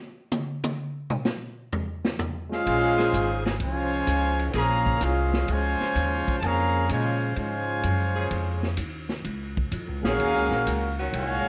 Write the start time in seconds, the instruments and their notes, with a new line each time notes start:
0.31 hi-hat pedal, high tom
0.64 high tom
1.10 mid tom
1.25 snare, hi-hat pedal
1.73 floor tom
2.05 snare
2.19 floor tom, hi-hat pedal
2.50 trombone section G#3 C#4 F4, trumpet section C#4 G#4 C5 F5, snare
2.67 upright bass A#1, kick, ride
2.98 saxophone section C#3 A#3 G#4 C5, snare
3.13 upright bass G#1, kick, hi-hat pedal, ride
3.44 saxophone section C#3 A#3 C4 G#4, snare
3.60 upright bass C2, trombone section F3 G#3 C#4, trumpet section F4 C5 C#5 G#5, kick, ride
4.07 upright bass C#2, kick, hi-hat pedal, ride
4.39 ride
4.53 upright bass A#1, trombone section C#3 F3 A#3, saxophone section C#3 A#3 C4 G#4, kick, snare, ride
4.58 trumpet section G#4 C#5 F5 A#5
4.86 kick
5.01 upright bass C2, trombone section G#3 C#4 F4, trumpet section C#4 G#4 C5 F5, kick, hi-hat pedal, ride
5.33 snare
5.48 upright bass C#2, trombone section C#3 F3 G#3, trumpet section F4 C5 C#5 G#5, kick, ride
5.81 muted upright bass stroke, snare
5.95 upright bass D#2, kick, hi-hat pedal, ride
6.28 muted upright bass stroke, kick, ride
6.39 upright bass F2, trombone section C#3 F3 A#3, trumpet section A5, kick, ride
6.46 trumpet section G#4 C#5 F5 A#5
6.89 upright bass A#2, trombone section C#3 F3 G#3, trumpet section F4 C5 C#5 G#5, kick, hi-hat pedal, ride
7.36 upright bass G#2, trombone section C#3 F3 G#3, trumpet section F4 C5 C#5 G#5, kick, ride
7.83 upright bass F#2, kick, hi-hat pedal, ride
8.15 saxophone section C#3 A#3 C#4 G#4
8.31 upright bass F2, kick, ride
8.63 snare
8.77 upright bass D#2, kick, hi-hat pedal, ride
9.09 snare
9.24 upright bass C#2, kick, ride
9.57 kick
9.72 upright bass F2, kick, hi-hat pedal, ride
9.88 upright bass C#2
10.02 upright bass A#1, saxophone section D#3 F#3 C#4 G#4, trombone section A#3 C#4 G#4, trumpet section F#4 A#4 F5, snare
10.06 trumpet section C#4
10.19 upright bass D#2, kick, ride
10.34 upright bass C#2, snare
10.49 upright bass A#1, snare
10.66 upright bass C#2, kick, hi-hat pedal, ride
10.99 saxophone section D#3 F#3 C#4 F#4
11.13 upright bass C2, trombone section A#2 C#3 G#3, trumpet section C#5 F5 G#5, kick, ride
11.17 trumpet section F#4